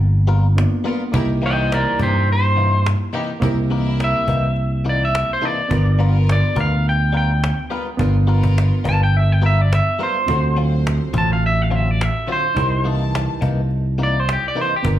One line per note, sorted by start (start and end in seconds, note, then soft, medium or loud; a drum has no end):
0.00 0.65 G1 medium
0.00 0.52 A#3 medium
0.00 0.53 B3 medium
0.00 0.53 D4 medium
0.00 0.54 F4 medium
0.27 0.46 G3 medium
0.27 0.46 B3 medium
0.27 0.46 F4 medium
0.27 0.46 A#4 medium
0.27 cajon slap soft
0.56 1.11 A#3 medium
0.56 1.13 B3 medium
0.56 1.14 D4 medium
0.56 1.14 F4 medium
0.56 cajon slap loud
0.84 1.03 G3 medium
0.84 1.03 B3 medium
0.84 1.01 B3 medium
0.84 1.03 F4 medium
0.84 1.01 F4 medium
0.84 1.03 A#4 medium
0.84 1.01 A#4 medium
1.12 1.85 C2 loud
1.12 3.37 A#3 medium
1.12 3.38 D#4 medium
1.12 1.29 D#4 medium
1.12 1.29 E4 medium
1.12 3.39 E4 medium
1.12 3.39 G4 medium
1.12 1.29 A#4 loud
1.12 cajon bass loud
1.42 1.60 C3 medium
1.42 1.60 E3 medium
1.42 1.99 E3 medium
1.42 1.61 A#3 medium
1.42 1.61 D#4 medium
1.42 1.99 C5 medium
1.42 cajon slap soft
1.46 1.72 D#5 medium
1.46 1.72 G5 medium
1.72 1.99 A#4 medium
1.72 2.00 D5 medium
1.72 cajon slap medium
1.99 2.94 G2 medium
1.99 2.17 C3 medium
1.99 2.17 E3 medium
1.99 2.18 A#3 medium
1.99 2.18 D#4 medium
1.99 2.27 G4 medium
1.99 cajon bass medium
2.03 2.29 C5 medium
2.28 cajon slap soft
2.32 2.86 C5 loud
2.56 2.74 C3 medium
2.56 2.75 E3 medium
2.56 2.75 A#3 medium
2.56 2.75 D#4 medium
2.56 cajon slap soft
2.86 cajon slap loud
3.13 3.31 C3 medium
3.13 3.32 E3 medium
3.13 3.32 A#3 medium
3.13 3.29 D#4 medium
3.13 3.32 D#4 medium
3.13 3.29 E4 medium
3.13 3.29 G4 loud
3.40 4.13 C2 loud
3.40 5.66 A#3 medium
3.40 5.66 C4 medium
3.40 3.57 D#4 medium
3.40 3.57 E4 medium
3.40 5.67 E4 medium
3.40 5.68 G4 medium
3.40 3.58 A#4 loud
3.40 cajon bass loud
3.70 3.89 C3 medium
3.70 3.89 E3 medium
3.70 3.89 A#3 loud
3.70 3.89 D#4 medium
3.70 4.27 E4 medium
3.70 4.28 A#4 medium
3.70 cajon slap soft
3.88 cajon slap soft
4.00 4.85 E5 loud
4.00 cajon slap medium
4.28 5.22 C2 medium
4.28 4.46 C3 medium
4.28 4.46 E3 medium
4.28 4.46 A#3 medium
4.28 4.47 D#4 medium
4.28 cajon bass medium
4.56 cajon slap soft
4.85 5.03 C3 medium
4.85 5.03 E3 medium
4.85 5.04 A#3 medium
4.85 5.04 D#4 medium
4.85 cajon slap soft
4.89 5.02 D5 medium
5.05 5.30 E5 medium
5.15 cajon slap loud
5.33 5.45 C5 loud
5.41 5.60 C3 medium
5.41 5.60 E3 medium
5.41 5.61 A#3 medium
5.41 5.57 D#4 medium
5.41 5.61 D#4 medium
5.41 5.57 E4 medium
5.41 5.58 A4 medium
5.41 5.99 D5 medium
5.69 6.42 G1 medium
5.69 7.94 B3 medium
5.69 5.86 B3 medium
5.69 7.95 D4 medium
5.69 5.86 F4 medium
5.69 7.96 F4 medium
5.69 5.86 A#4 medium
5.69 7.96 A#4 medium
5.69 cajon bass loud
5.99 6.17 G3 medium
5.99 6.56 B3 medium
5.99 6.17 B3 medium
5.99 6.57 F4 medium
5.99 6.18 F4 medium
5.99 6.57 A#4 medium
5.99 6.18 A#4 medium
5.99 cajon slap soft
6.16 cajon slap soft
6.29 6.58 D5 medium
6.29 cajon slap loud
6.56 7.51 D2 medium
6.56 6.74 G3 medium
6.56 6.74 B3 medium
6.56 6.75 F4 medium
6.56 6.75 A#4 medium
6.56 cajon bass medium
6.61 6.86 F5 medium
6.85 cajon slap soft
6.89 7.15 G5 medium
7.13 7.31 G3 medium
7.13 7.32 B3 medium
7.13 7.32 F4 medium
7.13 7.32 A#4 medium
7.13 cajon slap soft
7.17 8.26 G5 medium
7.44 cajon slap loud
7.59 cajon slap soft
7.70 7.89 G3 medium
7.70 7.86 B3 medium
7.70 7.89 B3 medium
7.70 7.86 F4 medium
7.70 7.89 F4 medium
7.70 7.89 A#4 medium
7.70 7.86 B4 medium
7.97 8.70 G1 loud
7.97 10.23 B3 medium
7.97 8.15 B3 medium
7.97 10.23 D4 medium
7.97 8.15 F4 medium
7.97 10.24 F4 medium
7.97 8.15 A#4 medium
7.97 10.25 A#4 medium
7.97 cajon bass loud
8.27 8.46 G3 medium
8.27 8.85 B3 medium
8.27 8.46 B3 medium
8.27 8.46 F4 medium
8.27 8.85 F4 medium
8.27 8.86 A#4 medium
8.27 8.47 A#4 medium
8.27 cajon slap soft
8.43 cajon bass medium
8.58 cajon slap medium
8.84 9.80 G1 medium
8.84 9.03 G3 medium
8.84 9.03 B3 medium
8.84 9.03 F4 medium
8.84 9.04 A#4 medium
8.84 cajon bass medium
8.89 9.02 A5 loud
9.03 9.17 G5 medium
9.14 9.32 E5 medium
9.14 cajon slap soft
9.32 9.43 G5 medium
9.42 9.60 G3 medium
9.42 9.60 B3 medium
9.42 9.61 F4 medium
9.42 9.61 A#4 medium
9.42 cajon slap soft
9.46 9.61 E5 medium
9.60 9.72 D5 medium
9.60 cajon slap soft
9.73 10.00 E5 medium
9.73 cajon slap loud
9.99 10.17 G3 medium
9.99 10.15 B3 medium
9.99 10.18 B3 medium
9.99 10.15 F4 medium
9.99 10.18 F4 medium
9.99 10.15 A#4 medium
9.99 10.18 A#4 medium
10.03 10.57 C5 medium
10.26 10.99 D2 loud
10.26 12.52 C4 medium
10.26 12.52 F4 medium
10.26 10.43 F4 medium
10.26 10.44 F#4 medium
10.26 12.53 F#4 medium
10.26 12.53 A4 medium
10.26 10.44 C5 medium
10.26 cajon bass medium
10.57 10.75 D3 medium
10.57 10.75 F#3 medium
10.57 11.14 F#3 medium
10.57 10.75 C4 medium
10.57 10.75 F4 medium
10.57 11.14 C5 medium
10.57 cajon slap soft
10.87 cajon slap loud
11.13 12.08 A1 medium
11.13 11.32 D3 medium
11.13 11.32 F#3 medium
11.13 11.32 C4 medium
11.13 11.32 F4 medium
11.13 cajon bass medium
11.18 11.31 A5 loud
11.31 11.44 F5 medium
11.31 cajon slap soft
11.43 11.62 E5 medium
11.43 cajon slap soft
11.62 11.75 F5 medium
11.71 11.89 D3 medium
11.71 11.89 F#3 medium
11.71 11.89 C4 medium
11.71 11.89 F4 medium
11.71 cajon slap soft
11.75 11.91 E5 medium
11.88 12.03 D5 medium
11.88 cajon slap soft
12.01 12.29 E5 medium
12.01 cajon slap loud
12.27 12.46 D3 medium
12.27 12.46 F#3 medium
12.27 12.46 C4 medium
12.27 12.43 F4 medium
12.27 12.46 F4 medium
12.27 12.43 F#4 medium
12.27 12.43 C5 medium
12.32 12.85 C5 medium
12.55 13.27 C2 loud
12.55 14.80 D#4 medium
12.55 12.72 D#4 medium
12.55 14.80 E4 medium
12.55 12.72 E4 medium
12.55 14.81 G4 medium
12.55 12.72 A#4 medium
12.55 cajon bass loud
12.59 14.82 A#4 medium
12.84 13.03 C3 medium
12.84 13.41 E3 medium
12.84 13.03 E3 medium
12.84 13.03 A#3 medium
12.84 13.03 D#4 loud
12.84 13.42 A5 medium
12.84 cajon slap soft
13.15 cajon slap loud
13.41 14.36 C2 medium
13.41 13.60 C3 medium
13.41 13.60 E3 medium
13.41 13.60 A#3 medium
13.41 13.60 D#4 loud
13.41 cajon bass medium
13.71 cajon slap soft
13.98 14.17 C3 medium
13.98 14.17 E3 medium
13.98 14.17 A#3 medium
13.98 14.17 D#4 medium
13.98 cajon slap soft
14.03 14.20 D5 medium
14.20 14.30 C5 medium
14.29 14.45 G4 medium
14.29 cajon slap loud
14.48 14.58 D5 medium
14.55 14.74 C3 medium
14.55 14.74 E3 medium
14.55 14.74 A#3 medium
14.55 14.71 D#4 medium
14.55 14.74 D#4 medium
14.55 14.71 E4 medium
14.55 14.71 A#4 medium
14.61 14.74 C5 medium
14.76 14.87 G4 medium
14.83 14.99 G1 medium
14.83 14.99 B3 medium
14.83 14.99 D4 medium
14.83 14.99 F4 medium
14.83 14.99 A#4 medium
14.83 cajon bass loud
14.87 14.99 A#4 medium